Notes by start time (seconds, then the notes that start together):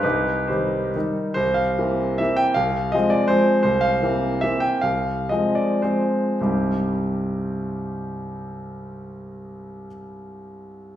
0.03 C2 D#4 G4 B4
0.48 D#3 G3 D#4 G4 C5
0.95 D#3 G3 D#4
1.34 C2 C5
1.54 F5
1.78 E3 A#3 C4
2.18 E3 A#3 C4 E5
2.37 G5
2.54 C2 F5
2.92 F3 G#3 C4 D#5
3.10 D5
3.28 F3 G#3 C4 C5
3.63 C2 C5
3.81 F5
4.03 E3 A#3 C4
4.41 E3 A#3 C4 E5
4.60 G5
4.81 C2 F5
5.29 F3 G#3 C4 D#5
5.55 D5
5.82 F3 G#3 C4 C5
6.40 C2 G2 G3 C4 D#4 G4 C5